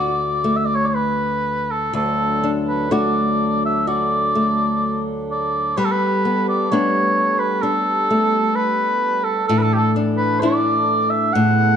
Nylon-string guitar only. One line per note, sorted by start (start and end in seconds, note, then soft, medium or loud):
0.00 1.92 D2 medium
0.00 0.44 A3 soft
0.00 2.43 D4 soft
0.00 2.92 F#4 soft
0.44 2.91 A3 soft
1.93 5.78 D2 medium
2.44 2.91 D4 soft
2.91 4.35 A3 soft
2.91 6.25 D4 soft
2.91 3.86 F#4 soft
3.87 5.88 F#4 soft
4.35 6.28 A3 soft
5.77 9.48 G3 medium
6.25 6.71 B3 soft
6.72 8.10 A3 soft
6.72 9.58 B3 soft
6.72 7.63 D4 soft
7.63 9.58 D4 soft
8.11 10.42 A3 soft
9.49 11.34 A2 medium
9.96 10.42 D4 soft
10.42 11.77 A3 soft
10.42 11.45 D4 soft
10.42 11.77 E4 medium
11.35 11.77 A2 medium